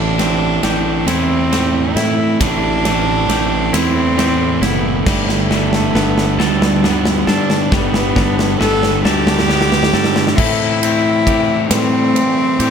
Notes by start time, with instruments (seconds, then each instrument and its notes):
Already playing: fingered electric bass A1, distorted electric guitar A2 E3 A3 C4 E4, clean electric guitar A2 A4, cello D4
0.18 distorted electric guitar A2 E3 A3 C4 E4, clean electric guitar C4, snare, ride
0.63 fingered electric bass A1, distorted electric guitar A2 E3 A3 C4 E4, clean electric guitar G4, snare, ride
1.07 fingered electric bass E2, distorted electric guitar A2 E3 A3 C4 E4, cello C4, clean electric guitar E4, snare, ride
1.52 distorted electric guitar A2 E3 A3 C4 E4, clean electric guitar G4, snare, ride
1.95 fingered electric bass A2, cello E4, clean electric guitar E4, snare, ride
2.40 fingered electric bass A1, clean electric guitar A2, distorted electric guitar A2 E3 A3 C4 E4, cello D4, kick, snare, ride
2.85 distorted electric guitar A2 E3 A3 C4 E4, snare, ride
3.28 fingered electric bass A1, distorted electric guitar A2 E3 A3 C4, clean electric guitar G4, snare, ride
3.32 distorted electric guitar E4
3.73 fingered electric bass E2, distorted electric guitar A2 E3 A3 C4 E4, cello C4, clean electric guitar E4, snare, ride
4.17 distorted electric guitar A2 E3 A3 C4 E4, clean electric guitar G4, snare, ride
4.62 fingered electric bass F#1, cello B3, clean electric guitar E4, snare, ride
5.06 fingered electric bass G1, distorted electric guitar G2 D3 G3 B3 D4, clean electric guitar G3, cello A3, kick, snare, crash
5.29 snare
5.50 distorted electric guitar G2 D3 G3 B3 D4, clean electric guitar D4, snare
5.73 snare
5.94 fingered electric bass G1, distorted electric guitar G2 D3 G3 B3 D4, clean electric guitar B3, snare
6.18 snare
6.38 fingered electric bass D2, distorted electric guitar G2 D3 G3 B3 D4, cello G3, clean electric guitar A4, snare
6.62 snare
6.83 distorted electric guitar G2 D3 G3 B3 D4, clean electric guitar B3, snare
7.05 snare
7.27 fingered electric bass G2, cello D4, clean electric guitar A4, snare
7.50 snare
7.72 fingered electric bass G1, distorted electric guitar G2 D3 G3 B3 D4, clean electric guitar G3, cello B3, kick, snare
7.94 snare
8.16 distorted electric guitar G2 D3 G3 B3 D4, clean electric guitar D4, kick, snare
8.39 snare
8.60 fingered electric bass G1, distorted electric guitar G2 D3 G3 B3 D4, clean electric guitar B3, cello A4, snare
8.83 snare
9.04 fingered electric bass D2, distorted electric guitar G2 D3 G3 B3 D4, cello G4, clean electric guitar A4, snare
9.27 snare
9.39 snare
9.49 distorted electric guitar G2 D3 G3 B3 D4, clean electric guitar B3, snare
9.61 snare
9.72 snare
9.83 snare
9.93 fingered electric bass G2, clean electric guitar A4, snare
10.04 snare
10.16 snare
10.27 snare
10.37 overdriven electric guitar A2 E3 A3 C4 E4, clean electric guitar A2, fingered electric bass A2, cello E4, kick, crash
10.82 overdriven electric guitar A3 C4 E4, clean electric guitar C4, ride
11.26 overdriven electric guitar E3 A3 C4, clean electric guitar G4, kick, ride
11.30 overdriven electric guitar E4
11.70 fingered electric bass A2, clean electric guitar G3, overdriven electric guitar A3 C4 E4, cello C4, snare, ride
11.74 overdriven electric guitar A2 E3
12.15 clean electric guitar C4, ride
12.59 fingered electric bass A2, overdriven electric guitar A3 C4 E4, clean electric guitar G4, ride